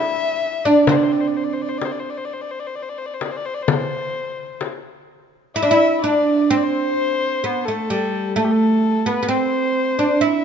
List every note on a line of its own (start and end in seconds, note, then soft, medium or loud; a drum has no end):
0.00 0.65 E4 loud
0.00 0.66 E5 medium
0.65 0.89 D4 medium
0.65 0.88 D5 medium
0.87 4.58 C4 medium
0.87 0.97 C5 medium
0.87 frame drum medium
0.96 1.05 D5 medium
1.03 1.13 C5 medium
1.12 1.22 D5 medium
1.20 1.29 C5 medium
1.28 1.38 D5 medium
1.36 1.45 C5 medium
1.44 1.55 D5 medium
1.53 1.63 C5 medium
1.62 1.70 D5 medium
1.69 1.79 C5 medium
1.78 1.87 D5 medium
1.78 frame drum medium
1.85 1.93 C5 medium
1.92 2.01 D5 medium
1.99 2.11 C5 soft
2.10 2.19 D5 medium
2.17 2.26 C5 medium
2.25 2.34 D5 medium
2.33 2.43 C5 medium
2.41 2.52 D5 medium
2.51 2.61 C5 medium
2.59 2.68 D5 medium
2.67 2.77 C5 medium
2.75 2.84 D5 medium
2.82 2.91 C5 medium
2.89 2.99 D5 medium
2.98 3.07 C5 medium
3.06 3.15 D5 medium
3.14 3.24 C5 soft
3.21 3.33 D5 soft
3.21 frame drum medium
3.31 3.38 C5 medium
3.37 3.47 D5 medium
3.45 3.55 C5 medium
3.54 3.63 D5 medium
3.62 4.62 C5 medium
3.68 frame drum loud
4.61 frame drum medium
5.56 5.62 E4 loud
5.56 5.99 E5 loud
5.63 5.69 D4 medium
5.71 6.00 E4 loud
6.02 6.51 D4 medium
6.02 6.51 D5 medium
6.50 7.43 C4 medium
6.50 6.58 C5 medium
6.57 6.64 D5 medium
6.63 7.66 C5 medium
7.44 7.67 B3 medium
7.65 7.91 A3 medium
7.65 8.35 A4 medium
7.90 8.38 G3 medium
8.36 9.06 A3 medium
8.36 8.46 A4 medium
8.44 8.52 G4 medium
8.51 9.08 A4 medium
9.06 9.21 B3 medium
9.06 9.31 B4 medium
9.23 9.28 B3 medium
9.28 10.01 C4 medium
9.28 10.25 C5 medium
9.99 10.21 D4 medium
10.21 10.45 E4 medium
10.21 10.45 E5 medium